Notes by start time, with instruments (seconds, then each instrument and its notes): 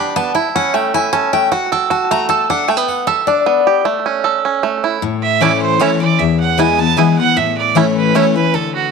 Already playing: five-string banjo B3 D4 G4, steel-string acoustic guitar B5
0.16 five-string banjo B3, steel-string acoustic guitar A5
0.35 five-string banjo E4, steel-string acoustic guitar G5
0.56 five-string banjo C#4, steel-string acoustic guitar F#5
0.74 five-string banjo A3, steel-string acoustic guitar G5
0.94 five-string banjo E4, steel-string acoustic guitar G#5
1.13 five-string banjo C#4, steel-string acoustic guitar A5
1.33 five-string banjo A3, steel-string acoustic guitar G5
1.52 five-string banjo F#4, steel-string acoustic guitar F#5
1.72 five-string banjo A4, steel-string acoustic guitar G5
1.90 five-string banjo F#4, steel-string acoustic guitar A5
2.11 five-string banjo A3, steel-string acoustic guitar A#5
2.29 five-string banjo A4, steel-string acoustic guitar A5
2.50 five-string banjo D4, steel-string acoustic guitar F#5
2.68 five-string banjo A3, steel-string acoustic guitar G5
2.77 five-string banjo B3
2.88 steel-string acoustic guitar F#5
3.07 five-string banjo A4, steel-string acoustic guitar E5
3.27 five-string banjo D4, steel-string acoustic guitar D5
3.46 five-string banjo B3
3.67 five-string banjo G4
3.85 five-string banjo A3
4.06 five-string banjo C#4
4.24 five-string banjo A4
4.45 five-string banjo C#4
4.63 five-string banjo A3
4.84 five-string banjo E4
5.02 steel-string acoustic guitar A2
5.22 fiddle E5
5.41 steel-string acoustic guitar E3 A3 C#4 E4, five-string banjo A3 C#4 E4, fiddle D5
5.62 fiddle C5
5.79 steel-string acoustic guitar E3 A3 C#4 E4, five-string banjo A3 C#4 E4, fiddle C#5
6.00 steel-string acoustic guitar C#4 E4, fiddle D5
6.19 steel-string acoustic guitar E2, fiddle E5
6.40 fiddle F#5
6.58 steel-string acoustic guitar E3 G#3 B3 E4, five-string banjo B3 E4, fiddle G#5
6.78 steel-string acoustic guitar B3 E4, fiddle A5
6.97 steel-string acoustic guitar E3 G#3 B3 E4, five-string banjo B3 E4, fiddle G#5
7.18 steel-string acoustic guitar B3 E4, fiddle F#5
7.37 steel-string acoustic guitar A2, fiddle E5
7.58 fiddle D5
7.75 steel-string acoustic guitar E3 A3 C#4 E4, five-string banjo A3 C#4 E4, fiddle C#5
7.97 fiddle B4
8.15 steel-string acoustic guitar E3 A3 C#4 E4, five-string banjo A3 C#4 E4, fiddle C#5
8.35 steel-string acoustic guitar C#4 E4, fiddle B4
8.54 steel-string acoustic guitar D3, fiddle A4
8.75 fiddle F#4